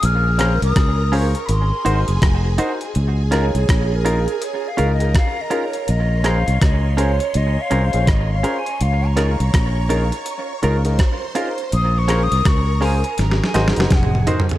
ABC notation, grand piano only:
X:1
M:4/4
L:1/16
Q:"Swing 16ths" 1/4=82
K:Db
V:1 name="Grand piano"
z2 [DFAc] z3 [DFAc] z3 [EGBc] z2 [Bc] [EGBc] z | z2 [EFAB] z3 [EFAB] z3 [EFAB] [EFAB] z2 [EFAB] z | z2 [DFAc] z3 [DFAc] z3 [DFAc] [DFAc] z2 [DFAc] z | z2 [EFAB] z3 [EFAB] z3 [EFAB] [EFAB] z2 [EFAB] z |
z2 [DFAc] z3 [DFAc] z3 [EGBc] [EGBc] z2 [EGBc] z |]